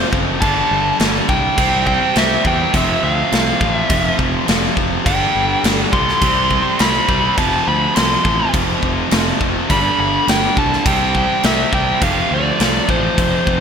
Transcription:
Already playing: distorted electric guitar F2 C3 F3, overdriven electric guitar F2 C3 F3
0.12 fingered electric bass F#1, distorted electric guitar F2 C3 F3, kick
0.41 fingered electric bass G1, distorted electric guitar G2 D3 G3, lead electric guitar A5, kick, crash
0.71 fingered electric bass G1
0.99 fingered electric bass G1, distorted electric guitar G2 D3 G3, snare, crash
1.28 fingered electric bass C2, distorted electric guitar G2 D3 G3, lead electric guitar G5, kick
1.57 fingered electric bass C2, distorted electric guitar C3 G3 C4, kick, crash
1.87 lead electric guitar G5, kick
2.15 fingered electric bass C2, distorted electric guitar C3 G3 C4, lead electric guitar E5, snare, crash
2.44 fingered electric bass E2, distorted electric guitar C3 G3 C4, lead electric guitar G5, kick
2.73 fingered electric bass F1, distorted electric guitar F2 C3 F3, lead electric guitar E5, kick, crash
3.03 fingered electric bass D2, lead electric guitar F5
3.31 fingered electric bass C2, distorted electric guitar F2 C3 F3, snare, crash
3.60 fingered electric bass A1, distorted electric guitar F2 C3 F3, kick
3.78 lead electric guitar E5
3.89 fingered electric bass F1, distorted electric guitar F2 C3 F3, kick, crash
4.19 fingered electric bass F1, kick
4.47 fingered electric bass F1, distorted electric guitar F2 C3 F3, snare, crash
4.75 fingered electric bass F1, distorted electric guitar F2 C3 F3, kick
5.05 fingered electric bass G1, distorted electric guitar G2 D3 G3, lead electric guitar G5, kick, crash
5.35 fingered electric bass G1
5.62 fingered electric bass G1, distorted electric guitar G2 D3 G3, snare, crash
5.92 fingered electric bass C2, distorted electric guitar G2 D3 G3, lead electric guitar C6, kick
6.09 snare
6.21 fingered electric bass C2, distorted electric guitar C3 G3 C4, kick, crash
6.51 kick
6.79 fingered electric bass C2, distorted electric guitar C3 G3 C4, lead electric guitar B5, snare, crash
7.08 fingered electric bass C2, distorted electric guitar C3 G3 C4, kick
7.36 fingered electric bass F1, distorted electric guitar F2 C3 F3, lead electric guitar A5, kick, crash
7.68 fingered electric bass D2, lead electric guitar B5
7.94 fingered electric bass C2, distorted electric guitar F2 C3 F3, lead electric guitar C6, snare, crash
8.24 fingered electric bass A1, distorted electric guitar F2 C3 F3, kick
8.28 overdriven electric guitar F2
8.52 fingered electric bass F1, distorted electric guitar F2 C3 F3, kick, crash
8.83 fingered electric bass F1, kick
9.11 fingered electric bass F1, distorted electric guitar F2 C3 F3, snare, crash
9.40 fingered electric bass F1, distorted electric guitar F2 C3 F3, kick
9.68 fingered electric bass G1, distorted electric guitar G2 D3 G3, lead electric guitar B5, kick, crash
9.98 fingered electric bass G1, lead electric guitar B5
10.27 fingered electric bass G1, distorted electric guitar G2 D3 G3, lead electric guitar G5, snare, crash
10.56 fingered electric bass C2, distorted electric guitar G2 D3 G3, lead electric guitar A5, kick
10.73 snare
10.85 fingered electric bass C2, distorted electric guitar C3 G3 C4, lead electric guitar G5, kick, crash
11.15 lead electric guitar G5, kick
11.43 fingered electric bass C2, distorted electric guitar C3 G3 C4, lead electric guitar E5, snare, crash
11.72 fingered electric bass C2, distorted electric guitar C3 G3 C4, lead electric guitar G5, kick
12.01 fingered electric bass F1, distorted electric guitar F2 C3 F3, lead electric guitar F5, kick, crash
12.31 fingered electric bass D2, lead electric guitar D5
12.59 fingered electric bass C2, distorted electric guitar F2 C3 F3, snare, crash
12.88 fingered electric bass A1, distorted electric guitar F2 C3 F3, lead electric guitar C5, kick
12.92 overdriven electric guitar F2
13.17 fingered electric bass F1, distorted electric guitar F2 C3 F3, kick, crash
13.47 fingered electric bass F1, kick

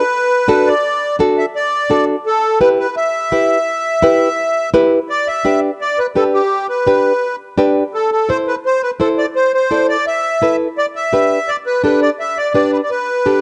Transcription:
Already playing: accordion B4
0.48 nylon-string guitar D4 F#4 A4
0.67 accordion D5
1.19 nylon-string guitar D4 F#4 A4
1.38 accordion E5
1.56 accordion D5
1.90 nylon-string guitar D4 F#4 A4
2.26 accordion A4
2.61 nylon-string guitar E4 G4 B4, accordion B4
2.79 accordion B4
2.97 accordion E5
3.32 nylon-string guitar E4 G4 B4
4.02 nylon-string guitar E4 G4 B4
4.74 nylon-string guitar E4 G4 B4
5.10 accordion D5
5.28 accordion E5
5.45 nylon-string guitar D4 G4 B4
5.81 accordion D5
5.99 accordion B4
6.15 nylon-string guitar D4 G4 B4, accordion A4
6.34 accordion G4
6.69 accordion B4
6.86 nylon-string guitar D4 G4 B4
7.58 nylon-string guitar D4 G4 B4
7.94 accordion A4
8.12 accordion A4
8.29 nylon-string guitar E4 A4 C5, accordion C5
8.48 accordion B4
8.66 accordion C5
8.83 accordion B4
9.00 nylon-string guitar E4 A4 C5, accordion A4
9.18 accordion D5
9.36 accordion C5
9.54 accordion C5
9.71 nylon-string guitar E4 A4 D5
9.89 accordion D5
10.07 accordion E5
10.42 nylon-string guitar E4 A4 B4
10.78 accordion D5
10.96 accordion E5
11.13 nylon-string guitar D4 G4 B4
11.48 accordion D5
11.66 accordion B4
11.84 nylon-string guitar D4 G4 A4, accordion B4
12.02 accordion D5
12.20 accordion E5
12.37 accordion D5
12.54 nylon-string guitar D4 G4 B4, accordion D5
12.73 accordion B4
12.83 accordion D5
12.90 accordion B4
13.26 nylon-string guitar D4 G4 A4

